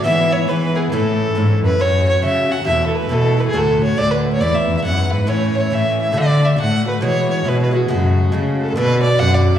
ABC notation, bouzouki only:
X:1
M:2/4
L:1/8
Q:"Swing" 1/4=138
K:A
V:1 name="Bouzouki"
[G,,E,B,E]2 [G,,E,B,E] [E,B,E] | [A,,E,CE]2 [A,,E,CE]2 | [K:F#m] [A,,F,CF]2 [A,,F,CF] [F,CF] | [B,,E,A,E]2 [B,,E,A,E] [E,A,E] |
[A,,D,A,F]2 [A,,D,A,F]2 | [G,,E,B,E]2 [G,,E,B,E]2 | [A,,E,CE]2 [A,,E,CE]2 | [A,,D,A,F]2 [A,,D,A,F] [D,A,F] |
[B,,G,EF]2 [B,,G,EF] [G,EF] | [C,G,A,F]2 [C,G,A,F]2 | [K:Bdor] [B,,D,DF]2 [B,,D,DF]2 |]